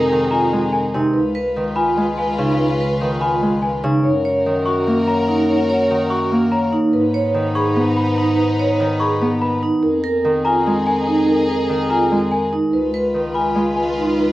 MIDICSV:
0, 0, Header, 1, 7, 480
1, 0, Start_track
1, 0, Tempo, 413793
1, 1321, Time_signature, 7, 3, 24, 8
1, 16612, End_track
2, 0, Start_track
2, 0, Title_t, "Celesta"
2, 0, Program_c, 0, 8
2, 361, Note_on_c, 0, 82, 73
2, 673, Note_off_c, 0, 82, 0
2, 841, Note_on_c, 0, 80, 73
2, 1153, Note_off_c, 0, 80, 0
2, 2040, Note_on_c, 0, 83, 70
2, 2353, Note_off_c, 0, 83, 0
2, 2528, Note_on_c, 0, 80, 69
2, 2836, Note_off_c, 0, 80, 0
2, 3725, Note_on_c, 0, 83, 70
2, 4035, Note_off_c, 0, 83, 0
2, 4204, Note_on_c, 0, 80, 64
2, 4514, Note_off_c, 0, 80, 0
2, 5399, Note_on_c, 0, 85, 75
2, 5712, Note_off_c, 0, 85, 0
2, 5885, Note_on_c, 0, 82, 71
2, 6195, Note_off_c, 0, 82, 0
2, 7077, Note_on_c, 0, 85, 71
2, 7392, Note_off_c, 0, 85, 0
2, 7559, Note_on_c, 0, 82, 74
2, 7873, Note_off_c, 0, 82, 0
2, 8762, Note_on_c, 0, 85, 76
2, 9074, Note_off_c, 0, 85, 0
2, 9243, Note_on_c, 0, 83, 67
2, 9554, Note_off_c, 0, 83, 0
2, 10441, Note_on_c, 0, 85, 78
2, 10753, Note_off_c, 0, 85, 0
2, 10924, Note_on_c, 0, 83, 80
2, 11234, Note_off_c, 0, 83, 0
2, 12117, Note_on_c, 0, 82, 80
2, 12432, Note_off_c, 0, 82, 0
2, 12605, Note_on_c, 0, 80, 77
2, 12915, Note_off_c, 0, 80, 0
2, 13803, Note_on_c, 0, 82, 73
2, 14114, Note_off_c, 0, 82, 0
2, 14282, Note_on_c, 0, 80, 68
2, 14594, Note_off_c, 0, 80, 0
2, 15480, Note_on_c, 0, 83, 69
2, 15793, Note_off_c, 0, 83, 0
2, 15963, Note_on_c, 0, 80, 61
2, 16274, Note_off_c, 0, 80, 0
2, 16612, End_track
3, 0, Start_track
3, 0, Title_t, "Marimba"
3, 0, Program_c, 1, 12
3, 358, Note_on_c, 1, 80, 86
3, 672, Note_off_c, 1, 80, 0
3, 836, Note_on_c, 1, 70, 60
3, 1151, Note_off_c, 1, 70, 0
3, 1317, Note_on_c, 1, 71, 86
3, 1632, Note_off_c, 1, 71, 0
3, 2037, Note_on_c, 1, 80, 93
3, 2352, Note_off_c, 1, 80, 0
3, 2518, Note_on_c, 1, 71, 71
3, 2832, Note_off_c, 1, 71, 0
3, 2998, Note_on_c, 1, 71, 86
3, 3312, Note_off_c, 1, 71, 0
3, 3714, Note_on_c, 1, 80, 86
3, 4031, Note_off_c, 1, 80, 0
3, 4203, Note_on_c, 1, 71, 69
3, 4514, Note_off_c, 1, 71, 0
3, 4680, Note_on_c, 1, 73, 86
3, 4993, Note_off_c, 1, 73, 0
3, 5411, Note_on_c, 1, 85, 85
3, 5717, Note_off_c, 1, 85, 0
3, 5884, Note_on_c, 1, 73, 65
3, 6194, Note_off_c, 1, 73, 0
3, 6370, Note_on_c, 1, 73, 85
3, 6676, Note_off_c, 1, 73, 0
3, 7081, Note_on_c, 1, 85, 83
3, 7393, Note_off_c, 1, 85, 0
3, 7561, Note_on_c, 1, 73, 71
3, 7873, Note_off_c, 1, 73, 0
3, 8042, Note_on_c, 1, 71, 96
3, 8354, Note_off_c, 1, 71, 0
3, 8766, Note_on_c, 1, 83, 91
3, 9075, Note_off_c, 1, 83, 0
3, 9247, Note_on_c, 1, 71, 73
3, 9555, Note_off_c, 1, 71, 0
3, 9721, Note_on_c, 1, 71, 95
3, 10033, Note_off_c, 1, 71, 0
3, 10438, Note_on_c, 1, 83, 89
3, 10752, Note_off_c, 1, 83, 0
3, 10929, Note_on_c, 1, 71, 69
3, 11236, Note_off_c, 1, 71, 0
3, 11400, Note_on_c, 1, 70, 97
3, 11713, Note_off_c, 1, 70, 0
3, 12122, Note_on_c, 1, 80, 98
3, 12433, Note_off_c, 1, 80, 0
3, 12606, Note_on_c, 1, 70, 67
3, 12915, Note_off_c, 1, 70, 0
3, 13092, Note_on_c, 1, 70, 100
3, 13397, Note_off_c, 1, 70, 0
3, 13809, Note_on_c, 1, 80, 88
3, 14116, Note_off_c, 1, 80, 0
3, 14291, Note_on_c, 1, 70, 71
3, 14597, Note_off_c, 1, 70, 0
3, 14767, Note_on_c, 1, 71, 85
3, 15075, Note_off_c, 1, 71, 0
3, 15482, Note_on_c, 1, 80, 85
3, 15794, Note_off_c, 1, 80, 0
3, 15965, Note_on_c, 1, 71, 58
3, 16275, Note_off_c, 1, 71, 0
3, 16438, Note_on_c, 1, 71, 78
3, 16612, Note_off_c, 1, 71, 0
3, 16612, End_track
4, 0, Start_track
4, 0, Title_t, "Violin section"
4, 0, Program_c, 2, 48
4, 0, Note_on_c, 2, 63, 82
4, 0, Note_on_c, 2, 68, 83
4, 1042, Note_off_c, 2, 68, 0
4, 1045, Note_off_c, 2, 63, 0
4, 1326, Note_on_c, 2, 71, 72
4, 1328, Note_on_c, 2, 65, 67
4, 4397, Note_off_c, 2, 71, 0
4, 4398, Note_off_c, 2, 65, 0
4, 4686, Note_on_c, 2, 70, 71
4, 4692, Note_on_c, 2, 66, 71
4, 7757, Note_off_c, 2, 70, 0
4, 7761, Note_off_c, 2, 66, 0
4, 8033, Note_on_c, 2, 71, 70
4, 8039, Note_on_c, 2, 63, 81
4, 11111, Note_off_c, 2, 71, 0
4, 11114, Note_off_c, 2, 63, 0
4, 11408, Note_on_c, 2, 63, 78
4, 11409, Note_on_c, 2, 68, 85
4, 14478, Note_off_c, 2, 63, 0
4, 14479, Note_off_c, 2, 68, 0
4, 14773, Note_on_c, 2, 65, 70
4, 14773, Note_on_c, 2, 71, 70
4, 16612, Note_off_c, 2, 65, 0
4, 16612, Note_off_c, 2, 71, 0
4, 16612, End_track
5, 0, Start_track
5, 0, Title_t, "Vibraphone"
5, 0, Program_c, 3, 11
5, 0, Note_on_c, 3, 70, 81
5, 197, Note_off_c, 3, 70, 0
5, 369, Note_on_c, 3, 65, 64
5, 676, Note_off_c, 3, 65, 0
5, 1094, Note_on_c, 3, 63, 73
5, 1398, Note_off_c, 3, 63, 0
5, 1566, Note_on_c, 3, 71, 81
5, 1875, Note_off_c, 3, 71, 0
5, 2045, Note_on_c, 3, 65, 64
5, 2355, Note_off_c, 3, 65, 0
5, 2765, Note_on_c, 3, 63, 63
5, 3075, Note_off_c, 3, 63, 0
5, 3249, Note_on_c, 3, 71, 81
5, 3556, Note_off_c, 3, 71, 0
5, 3726, Note_on_c, 3, 65, 58
5, 4035, Note_off_c, 3, 65, 0
5, 4452, Note_on_c, 3, 63, 73
5, 4757, Note_off_c, 3, 63, 0
5, 4930, Note_on_c, 3, 73, 77
5, 5236, Note_off_c, 3, 73, 0
5, 5413, Note_on_c, 3, 66, 60
5, 5718, Note_off_c, 3, 66, 0
5, 6125, Note_on_c, 3, 63, 70
5, 6435, Note_off_c, 3, 63, 0
5, 6604, Note_on_c, 3, 73, 84
5, 6914, Note_off_c, 3, 73, 0
5, 7079, Note_on_c, 3, 66, 62
5, 7393, Note_off_c, 3, 66, 0
5, 7805, Note_on_c, 3, 63, 76
5, 8115, Note_off_c, 3, 63, 0
5, 8287, Note_on_c, 3, 73, 86
5, 8595, Note_off_c, 3, 73, 0
5, 8764, Note_on_c, 3, 68, 75
5, 9074, Note_off_c, 3, 68, 0
5, 9488, Note_on_c, 3, 63, 77
5, 9796, Note_off_c, 3, 63, 0
5, 9971, Note_on_c, 3, 73, 85
5, 10277, Note_off_c, 3, 73, 0
5, 10446, Note_on_c, 3, 68, 70
5, 10755, Note_off_c, 3, 68, 0
5, 11166, Note_on_c, 3, 63, 71
5, 11475, Note_off_c, 3, 63, 0
5, 11643, Note_on_c, 3, 70, 98
5, 11954, Note_off_c, 3, 70, 0
5, 12128, Note_on_c, 3, 65, 64
5, 12436, Note_off_c, 3, 65, 0
5, 12844, Note_on_c, 3, 63, 77
5, 13154, Note_off_c, 3, 63, 0
5, 13325, Note_on_c, 3, 70, 93
5, 13635, Note_off_c, 3, 70, 0
5, 13807, Note_on_c, 3, 65, 68
5, 14115, Note_off_c, 3, 65, 0
5, 14530, Note_on_c, 3, 63, 70
5, 14836, Note_off_c, 3, 63, 0
5, 15009, Note_on_c, 3, 71, 87
5, 15316, Note_off_c, 3, 71, 0
5, 15491, Note_on_c, 3, 65, 61
5, 15797, Note_off_c, 3, 65, 0
5, 16215, Note_on_c, 3, 63, 66
5, 16518, Note_off_c, 3, 63, 0
5, 16612, End_track
6, 0, Start_track
6, 0, Title_t, "Harp"
6, 0, Program_c, 4, 46
6, 0, Note_on_c, 4, 48, 91
6, 0, Note_on_c, 4, 51, 83
6, 0, Note_on_c, 4, 56, 77
6, 124, Note_off_c, 4, 51, 0
6, 138, Note_on_c, 4, 51, 69
6, 597, Note_off_c, 4, 56, 0
6, 611, Note_on_c, 4, 56, 68
6, 1078, Note_off_c, 4, 48, 0
6, 1092, Note_on_c, 4, 48, 84
6, 1346, Note_off_c, 4, 48, 0
6, 1349, Note_off_c, 4, 51, 0
6, 1814, Note_on_c, 4, 51, 69
6, 2274, Note_off_c, 4, 56, 0
6, 2288, Note_on_c, 4, 56, 66
6, 2766, Note_on_c, 4, 49, 82
6, 3472, Note_off_c, 4, 51, 0
6, 3486, Note_on_c, 4, 51, 70
6, 3959, Note_off_c, 4, 56, 0
6, 3973, Note_on_c, 4, 56, 64
6, 4436, Note_off_c, 4, 49, 0
6, 4450, Note_on_c, 4, 49, 87
6, 4703, Note_off_c, 4, 51, 0
6, 4705, Note_off_c, 4, 49, 0
6, 4706, Note_off_c, 4, 56, 0
6, 5174, Note_on_c, 4, 51, 71
6, 5648, Note_on_c, 4, 58, 73
6, 6833, Note_off_c, 4, 51, 0
6, 6847, Note_on_c, 4, 51, 69
6, 7317, Note_off_c, 4, 58, 0
6, 7331, Note_on_c, 4, 58, 74
6, 8063, Note_off_c, 4, 51, 0
6, 8065, Note_off_c, 4, 58, 0
6, 8520, Note_on_c, 4, 51, 74
6, 9003, Note_on_c, 4, 59, 73
6, 10194, Note_off_c, 4, 51, 0
6, 10208, Note_on_c, 4, 51, 81
6, 10678, Note_off_c, 4, 59, 0
6, 10692, Note_on_c, 4, 59, 80
6, 11424, Note_off_c, 4, 51, 0
6, 11426, Note_off_c, 4, 59, 0
6, 11884, Note_on_c, 4, 51, 77
6, 12373, Note_on_c, 4, 56, 72
6, 13550, Note_off_c, 4, 51, 0
6, 13564, Note_on_c, 4, 51, 75
6, 14038, Note_off_c, 4, 56, 0
6, 14052, Note_on_c, 4, 56, 69
6, 14782, Note_off_c, 4, 51, 0
6, 15247, Note_on_c, 4, 51, 61
6, 15708, Note_off_c, 4, 56, 0
6, 15722, Note_on_c, 4, 56, 69
6, 16612, Note_off_c, 4, 51, 0
6, 16612, Note_off_c, 4, 56, 0
6, 16612, End_track
7, 0, Start_track
7, 0, Title_t, "Bass clarinet"
7, 0, Program_c, 5, 71
7, 0, Note_on_c, 5, 41, 93
7, 1179, Note_off_c, 5, 41, 0
7, 1329, Note_on_c, 5, 37, 66
7, 4543, Note_off_c, 5, 37, 0
7, 4680, Note_on_c, 5, 42, 79
7, 7898, Note_off_c, 5, 42, 0
7, 8039, Note_on_c, 5, 44, 84
7, 11258, Note_off_c, 5, 44, 0
7, 11407, Note_on_c, 5, 41, 78
7, 14622, Note_off_c, 5, 41, 0
7, 14756, Note_on_c, 5, 37, 81
7, 16612, Note_off_c, 5, 37, 0
7, 16612, End_track
0, 0, End_of_file